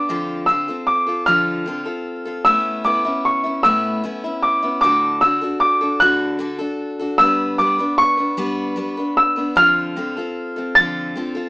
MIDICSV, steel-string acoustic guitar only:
0, 0, Header, 1, 2, 480
1, 0, Start_track
1, 0, Tempo, 790514
1, 56, Time_signature, 6, 3, 24, 8
1, 6977, End_track
2, 0, Start_track
2, 0, Title_t, "Steel-string acoustic guitar"
2, 0, Program_c, 0, 25
2, 54, Note_on_c, 0, 53, 69
2, 59, Note_on_c, 0, 50, 82
2, 60, Note_on_c, 0, 60, 74
2, 61, Note_on_c, 0, 65, 81
2, 64, Note_on_c, 0, 69, 74
2, 280, Note_off_c, 0, 50, 0
2, 286, Note_off_c, 0, 60, 0
2, 287, Note_on_c, 0, 50, 65
2, 289, Note_off_c, 0, 65, 0
2, 294, Note_on_c, 0, 60, 60
2, 295, Note_off_c, 0, 53, 0
2, 296, Note_off_c, 0, 69, 0
2, 296, Note_on_c, 0, 65, 63
2, 303, Note_on_c, 0, 69, 68
2, 405, Note_off_c, 0, 69, 0
2, 411, Note_off_c, 0, 50, 0
2, 411, Note_off_c, 0, 65, 0
2, 412, Note_on_c, 0, 69, 52
2, 415, Note_off_c, 0, 60, 0
2, 418, Note_on_c, 0, 65, 49
2, 426, Note_on_c, 0, 60, 47
2, 639, Note_off_c, 0, 69, 0
2, 647, Note_on_c, 0, 69, 51
2, 650, Note_off_c, 0, 65, 0
2, 655, Note_off_c, 0, 60, 0
2, 657, Note_on_c, 0, 65, 53
2, 663, Note_on_c, 0, 60, 44
2, 771, Note_off_c, 0, 69, 0
2, 772, Note_off_c, 0, 60, 0
2, 772, Note_off_c, 0, 65, 0
2, 772, Note_on_c, 0, 53, 80
2, 774, Note_on_c, 0, 50, 85
2, 779, Note_on_c, 0, 60, 69
2, 779, Note_on_c, 0, 65, 83
2, 783, Note_on_c, 0, 69, 81
2, 999, Note_off_c, 0, 50, 0
2, 1007, Note_on_c, 0, 50, 57
2, 1009, Note_off_c, 0, 60, 0
2, 1010, Note_off_c, 0, 65, 0
2, 1013, Note_off_c, 0, 53, 0
2, 1016, Note_off_c, 0, 69, 0
2, 1016, Note_on_c, 0, 60, 67
2, 1017, Note_on_c, 0, 65, 66
2, 1023, Note_on_c, 0, 69, 64
2, 1119, Note_off_c, 0, 69, 0
2, 1127, Note_on_c, 0, 69, 52
2, 1128, Note_off_c, 0, 65, 0
2, 1130, Note_off_c, 0, 50, 0
2, 1135, Note_off_c, 0, 60, 0
2, 1135, Note_on_c, 0, 65, 46
2, 1142, Note_on_c, 0, 60, 46
2, 1361, Note_off_c, 0, 69, 0
2, 1368, Note_on_c, 0, 69, 55
2, 1369, Note_off_c, 0, 65, 0
2, 1376, Note_off_c, 0, 60, 0
2, 1376, Note_on_c, 0, 65, 48
2, 1383, Note_on_c, 0, 60, 45
2, 1486, Note_on_c, 0, 45, 75
2, 1490, Note_off_c, 0, 60, 0
2, 1491, Note_off_c, 0, 65, 0
2, 1491, Note_off_c, 0, 69, 0
2, 1491, Note_on_c, 0, 57, 80
2, 1492, Note_on_c, 0, 61, 81
2, 1494, Note_on_c, 0, 59, 82
2, 1499, Note_on_c, 0, 64, 82
2, 1718, Note_off_c, 0, 57, 0
2, 1725, Note_off_c, 0, 61, 0
2, 1726, Note_on_c, 0, 57, 56
2, 1727, Note_off_c, 0, 59, 0
2, 1730, Note_off_c, 0, 45, 0
2, 1732, Note_on_c, 0, 61, 59
2, 1733, Note_off_c, 0, 64, 0
2, 1734, Note_on_c, 0, 59, 70
2, 1741, Note_on_c, 0, 64, 70
2, 1841, Note_off_c, 0, 64, 0
2, 1849, Note_on_c, 0, 64, 56
2, 1850, Note_off_c, 0, 57, 0
2, 1850, Note_off_c, 0, 59, 0
2, 1853, Note_off_c, 0, 61, 0
2, 1857, Note_on_c, 0, 59, 48
2, 1862, Note_on_c, 0, 61, 46
2, 2079, Note_off_c, 0, 64, 0
2, 2087, Note_off_c, 0, 59, 0
2, 2087, Note_on_c, 0, 64, 52
2, 2095, Note_off_c, 0, 61, 0
2, 2095, Note_on_c, 0, 59, 47
2, 2102, Note_on_c, 0, 61, 42
2, 2209, Note_off_c, 0, 61, 0
2, 2210, Note_off_c, 0, 64, 0
2, 2212, Note_on_c, 0, 45, 74
2, 2214, Note_off_c, 0, 59, 0
2, 2214, Note_on_c, 0, 57, 78
2, 2216, Note_on_c, 0, 61, 83
2, 2220, Note_on_c, 0, 59, 81
2, 2223, Note_on_c, 0, 64, 88
2, 2443, Note_off_c, 0, 57, 0
2, 2448, Note_off_c, 0, 61, 0
2, 2450, Note_on_c, 0, 57, 63
2, 2452, Note_off_c, 0, 45, 0
2, 2452, Note_off_c, 0, 59, 0
2, 2455, Note_off_c, 0, 64, 0
2, 2455, Note_on_c, 0, 61, 62
2, 2459, Note_on_c, 0, 59, 62
2, 2462, Note_on_c, 0, 64, 62
2, 2566, Note_off_c, 0, 64, 0
2, 2571, Note_off_c, 0, 57, 0
2, 2574, Note_off_c, 0, 59, 0
2, 2574, Note_off_c, 0, 61, 0
2, 2574, Note_on_c, 0, 64, 56
2, 2581, Note_on_c, 0, 59, 48
2, 2587, Note_on_c, 0, 61, 43
2, 2801, Note_off_c, 0, 64, 0
2, 2806, Note_off_c, 0, 59, 0
2, 2808, Note_on_c, 0, 64, 57
2, 2813, Note_on_c, 0, 59, 51
2, 2814, Note_off_c, 0, 61, 0
2, 2821, Note_on_c, 0, 61, 46
2, 2930, Note_off_c, 0, 64, 0
2, 2932, Note_on_c, 0, 45, 83
2, 2933, Note_off_c, 0, 59, 0
2, 2935, Note_off_c, 0, 61, 0
2, 2935, Note_on_c, 0, 50, 76
2, 2937, Note_on_c, 0, 62, 76
2, 2939, Note_on_c, 0, 66, 81
2, 2943, Note_on_c, 0, 69, 90
2, 3160, Note_off_c, 0, 50, 0
2, 3166, Note_off_c, 0, 62, 0
2, 3167, Note_on_c, 0, 50, 66
2, 3171, Note_off_c, 0, 66, 0
2, 3172, Note_off_c, 0, 45, 0
2, 3173, Note_on_c, 0, 62, 69
2, 3176, Note_off_c, 0, 69, 0
2, 3178, Note_on_c, 0, 66, 67
2, 3183, Note_on_c, 0, 69, 68
2, 3280, Note_off_c, 0, 69, 0
2, 3287, Note_on_c, 0, 69, 55
2, 3289, Note_off_c, 0, 66, 0
2, 3290, Note_off_c, 0, 50, 0
2, 3293, Note_off_c, 0, 62, 0
2, 3296, Note_on_c, 0, 66, 53
2, 3301, Note_on_c, 0, 62, 47
2, 3519, Note_off_c, 0, 69, 0
2, 3526, Note_on_c, 0, 69, 58
2, 3528, Note_off_c, 0, 66, 0
2, 3533, Note_off_c, 0, 62, 0
2, 3536, Note_on_c, 0, 66, 48
2, 3540, Note_on_c, 0, 62, 45
2, 3646, Note_off_c, 0, 62, 0
2, 3646, Note_off_c, 0, 66, 0
2, 3646, Note_on_c, 0, 45, 81
2, 3649, Note_off_c, 0, 69, 0
2, 3649, Note_on_c, 0, 50, 74
2, 3653, Note_on_c, 0, 62, 81
2, 3654, Note_on_c, 0, 66, 84
2, 3657, Note_on_c, 0, 69, 92
2, 3871, Note_off_c, 0, 50, 0
2, 3878, Note_on_c, 0, 50, 67
2, 3879, Note_off_c, 0, 62, 0
2, 3882, Note_off_c, 0, 66, 0
2, 3887, Note_on_c, 0, 62, 65
2, 3888, Note_off_c, 0, 69, 0
2, 3889, Note_off_c, 0, 45, 0
2, 3890, Note_on_c, 0, 66, 66
2, 3895, Note_on_c, 0, 69, 65
2, 3992, Note_off_c, 0, 69, 0
2, 3999, Note_on_c, 0, 69, 57
2, 4000, Note_off_c, 0, 66, 0
2, 4005, Note_off_c, 0, 50, 0
2, 4006, Note_off_c, 0, 62, 0
2, 4007, Note_on_c, 0, 66, 49
2, 4013, Note_on_c, 0, 62, 44
2, 4240, Note_off_c, 0, 69, 0
2, 4247, Note_off_c, 0, 66, 0
2, 4247, Note_on_c, 0, 69, 57
2, 4252, Note_off_c, 0, 62, 0
2, 4254, Note_on_c, 0, 66, 46
2, 4261, Note_on_c, 0, 62, 49
2, 4363, Note_off_c, 0, 62, 0
2, 4366, Note_on_c, 0, 55, 77
2, 4369, Note_off_c, 0, 69, 0
2, 4370, Note_on_c, 0, 62, 79
2, 4372, Note_off_c, 0, 66, 0
2, 4375, Note_on_c, 0, 59, 77
2, 4377, Note_on_c, 0, 71, 78
2, 4600, Note_off_c, 0, 55, 0
2, 4605, Note_off_c, 0, 62, 0
2, 4607, Note_on_c, 0, 55, 62
2, 4608, Note_off_c, 0, 59, 0
2, 4612, Note_off_c, 0, 71, 0
2, 4613, Note_on_c, 0, 62, 64
2, 4615, Note_on_c, 0, 59, 62
2, 4620, Note_on_c, 0, 71, 68
2, 4717, Note_off_c, 0, 71, 0
2, 4724, Note_off_c, 0, 59, 0
2, 4724, Note_on_c, 0, 71, 52
2, 4730, Note_off_c, 0, 55, 0
2, 4731, Note_off_c, 0, 62, 0
2, 4731, Note_on_c, 0, 59, 51
2, 4738, Note_on_c, 0, 62, 52
2, 4954, Note_off_c, 0, 71, 0
2, 4961, Note_on_c, 0, 71, 52
2, 4963, Note_off_c, 0, 59, 0
2, 4970, Note_on_c, 0, 59, 53
2, 4971, Note_off_c, 0, 62, 0
2, 4978, Note_on_c, 0, 62, 46
2, 5079, Note_off_c, 0, 62, 0
2, 5083, Note_off_c, 0, 71, 0
2, 5083, Note_on_c, 0, 55, 78
2, 5084, Note_off_c, 0, 59, 0
2, 5087, Note_on_c, 0, 62, 91
2, 5091, Note_on_c, 0, 59, 86
2, 5091, Note_on_c, 0, 71, 91
2, 5311, Note_off_c, 0, 55, 0
2, 5318, Note_off_c, 0, 62, 0
2, 5319, Note_on_c, 0, 55, 61
2, 5322, Note_off_c, 0, 59, 0
2, 5325, Note_on_c, 0, 62, 65
2, 5328, Note_off_c, 0, 71, 0
2, 5329, Note_on_c, 0, 59, 71
2, 5335, Note_on_c, 0, 71, 65
2, 5439, Note_off_c, 0, 71, 0
2, 5446, Note_off_c, 0, 55, 0
2, 5447, Note_on_c, 0, 71, 53
2, 5448, Note_off_c, 0, 59, 0
2, 5449, Note_off_c, 0, 62, 0
2, 5456, Note_on_c, 0, 59, 46
2, 5462, Note_on_c, 0, 62, 45
2, 5676, Note_off_c, 0, 71, 0
2, 5683, Note_on_c, 0, 71, 54
2, 5684, Note_off_c, 0, 59, 0
2, 5689, Note_off_c, 0, 62, 0
2, 5691, Note_on_c, 0, 59, 52
2, 5696, Note_on_c, 0, 62, 46
2, 5803, Note_on_c, 0, 53, 79
2, 5808, Note_off_c, 0, 62, 0
2, 5808, Note_off_c, 0, 71, 0
2, 5809, Note_on_c, 0, 50, 78
2, 5810, Note_off_c, 0, 59, 0
2, 5811, Note_on_c, 0, 60, 79
2, 5813, Note_on_c, 0, 65, 85
2, 5814, Note_on_c, 0, 69, 79
2, 6042, Note_off_c, 0, 50, 0
2, 6045, Note_off_c, 0, 60, 0
2, 6049, Note_off_c, 0, 53, 0
2, 6050, Note_on_c, 0, 50, 60
2, 6051, Note_off_c, 0, 65, 0
2, 6053, Note_on_c, 0, 60, 63
2, 6054, Note_off_c, 0, 69, 0
2, 6059, Note_on_c, 0, 65, 69
2, 6062, Note_on_c, 0, 69, 73
2, 6166, Note_off_c, 0, 69, 0
2, 6172, Note_off_c, 0, 50, 0
2, 6173, Note_off_c, 0, 65, 0
2, 6173, Note_on_c, 0, 69, 51
2, 6174, Note_off_c, 0, 60, 0
2, 6180, Note_on_c, 0, 65, 51
2, 6187, Note_on_c, 0, 60, 50
2, 6405, Note_off_c, 0, 69, 0
2, 6412, Note_on_c, 0, 69, 53
2, 6415, Note_off_c, 0, 65, 0
2, 6419, Note_off_c, 0, 60, 0
2, 6422, Note_on_c, 0, 65, 49
2, 6426, Note_on_c, 0, 60, 47
2, 6532, Note_off_c, 0, 60, 0
2, 6534, Note_off_c, 0, 69, 0
2, 6535, Note_off_c, 0, 65, 0
2, 6535, Note_on_c, 0, 53, 71
2, 6538, Note_on_c, 0, 50, 77
2, 6539, Note_on_c, 0, 60, 85
2, 6542, Note_on_c, 0, 65, 83
2, 6545, Note_on_c, 0, 69, 85
2, 6767, Note_off_c, 0, 50, 0
2, 6773, Note_off_c, 0, 60, 0
2, 6774, Note_on_c, 0, 50, 58
2, 6776, Note_off_c, 0, 53, 0
2, 6776, Note_off_c, 0, 65, 0
2, 6779, Note_off_c, 0, 69, 0
2, 6780, Note_on_c, 0, 60, 66
2, 6783, Note_on_c, 0, 65, 62
2, 6786, Note_on_c, 0, 69, 65
2, 6883, Note_off_c, 0, 69, 0
2, 6890, Note_on_c, 0, 69, 58
2, 6893, Note_off_c, 0, 65, 0
2, 6895, Note_off_c, 0, 50, 0
2, 6898, Note_off_c, 0, 60, 0
2, 6900, Note_on_c, 0, 65, 48
2, 6906, Note_on_c, 0, 60, 45
2, 6977, Note_off_c, 0, 60, 0
2, 6977, Note_off_c, 0, 65, 0
2, 6977, Note_off_c, 0, 69, 0
2, 6977, End_track
0, 0, End_of_file